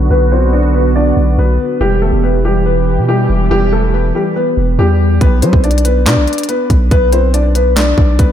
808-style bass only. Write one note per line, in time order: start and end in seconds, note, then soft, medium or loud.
0.10 1.13 B1 loud
1.17 1.37 B1 loud
1.38 1.59 B1 loud
1.81 2.11 E1 loud
2.13 2.99 E1 loud
2.98 3.28 B2 medium
3.30 3.50 E1 loud
3.51 4.12 E1 loud
4.57 4.78 E1 loud
4.79 5.19 E2 loud
5.21 5.44 B1 loud
5.42 5.53 F#3 loud
5.53 6.08 B1 loud
6.06 6.18 B2 loud
6.17 6.27 B1 loud
6.70 6.90 B1 loud
6.91 7.94 B1 loud
7.98 8.18 B1 loud
8.19 8.32 B1 loud